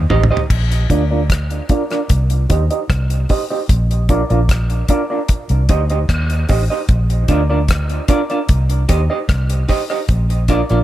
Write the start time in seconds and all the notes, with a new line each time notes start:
0.10 A1 D#4 G4 C5 D#5, floor tom
0.23 floor tom
0.31 D#4 G4 C5 D#5
0.37 floor tom
0.50 A#1, kick, crash
0.72 closed hi-hat
0.90 D2 D4 F4 A#4 D5, kick, closed hi-hat
1.11 D4 F4 A#4 D5
1.30 kick, cross-stick, closed hi-hat
1.51 closed hi-hat
1.69 D4 F4 A#4 D5, kick, closed hi-hat
1.91 D4 F4 A#4 D5, cross-stick, closed hi-hat
2.09 C2, kick, closed hi-hat
2.30 closed hi-hat
2.50 D#2 D#4 G4 C5 D#5, kick, closed hi-hat
2.71 D#4 G4 C5 D#5, closed hi-hat
2.90 C2, kick, cross-stick, closed hi-hat
3.10 closed hi-hat
3.29 D#4 G4 C5 D#5, kick, open hi-hat
3.50 D#4 G4 C5 D#5
3.69 A#1, kick, closed hi-hat
3.91 closed hi-hat
4.09 D4 F4 A#4 D5, kick, closed hi-hat
4.30 A#1 D4 F4 A#4 D5, closed hi-hat
4.49 kick, cross-stick, closed hi-hat
4.70 closed hi-hat
4.88 D4 F4 A#4 D5, kick, closed hi-hat
5.10 D4 F4 A#4 D5
5.28 kick, closed hi-hat
5.49 C2, closed hi-hat
5.69 D2 D#4 G4 C5 D#5, kick, closed hi-hat
5.90 D#4 G4 C5 D#5, closed hi-hat
6.09 D#2, kick, cross-stick, closed hi-hat
6.30 closed hi-hat
6.49 A1 D#4 G4 C5 D#5, kick, open hi-hat
6.70 D#4 G4 C5 D#5
6.89 A#1, kick, closed hi-hat
7.10 closed hi-hat
7.28 D2 D4 F4 A#4 D5, kick, closed hi-hat
7.50 D4 F4 A#4 D5
7.68 kick, cross-stick, closed hi-hat
7.90 closed hi-hat
8.08 D4 F4 A#4 D5, kick, closed hi-hat
8.30 D4 F4 A#4 D5, closed hi-hat
8.49 C2, kick, closed hi-hat
8.70 closed hi-hat
8.89 D#2 D#4 G4 C5 D#5, kick, closed hi-hat
9.10 D#4 G4 C5 D#5
9.29 C2, kick, cross-stick, closed hi-hat
9.50 closed hi-hat
9.69 D#4 G4 C5 D#5, kick, open hi-hat
9.90 D#4 G4 C5 D#5
10.09 A#1, kick, closed hi-hat
10.30 closed hi-hat
10.48 D4 F4 A#4 D5, kick, closed hi-hat
10.69 A#1 D4 F4 A#4 D5, closed hi-hat